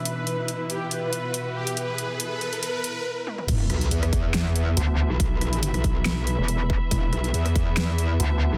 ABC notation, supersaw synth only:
X:1
M:4/4
L:1/8
Q:"Swing 16ths" 1/4=140
K:Clyd
V:1 name="Supersaw synth"
B3 G B3 G | B2 B2 B B z2 | z8 | z8 |
z8 |]